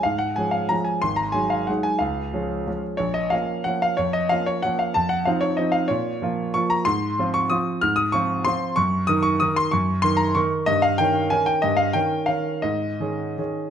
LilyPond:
<<
  \new Staff \with { instrumentName = "Grand piano" } { \time 3/4 \key ees \dorian \tempo 4 = 186 f''8 ges''8 aes''8 f''8 bes''8 aes''8 | c'''8 bes''8 aes''8 f''8 ges''8 aes''8 | f''2~ f''8 r8 | des''8 ees''8 f''4 ges''8 f''8 |
des''8 ees''8 f''8 des''8 ges''8 f''8 | a''8 ges''8 f''8 des''8 ees''8 f''8 | des''2 des'''8 bes''8 | c'''4. des'''8 ees'''4 |
f'''8 ees'''8 des'''4 c'''4 | des'''4 ees'''8 des'''8 ees'''8 c'''8 | des'''4 c'''8 bes''8 des'''8 r8 | ees''8 f''8 g''4 aes''8 g''8 |
ees''8 f''8 g''4 f''4 | ees''2. | }
  \new Staff \with { instrumentName = "Grand piano" } { \time 3/4 \key ees \dorian aes,4 <f aes des'>4 <f aes des'>4 | aes,,4 <ges aes ees'>4 <ges aes ees'>4 | des,4 <f aes des'>4 <f aes des'>4 | bes,,4 <f bes des'>4 <f bes des'>4 |
f,4 <f bes des'>4 <f bes des'>4 | f,4 <f c' ees'>4 <f c' ees'>4 | bes,4 <f bes f'>4 <f bes f'>4 | aes,4 <f c' f'>4 <f c' f'>4 |
aes,4 <f c' f'>4 <f c' f'>4 | ges,4 <ees ees' bes'>4 <ees ees' bes'>4 | ges,4 <ees ees' bes'>4 <ees ees' bes'>4 | g,4 <ees des' bes'>4 <ees des' bes'>4 |
g,4 <ees des' bes'>4 <ees des' bes'>4 | aes,4 <ees des' aes'>4 <ees des' aes'>4 | }
>>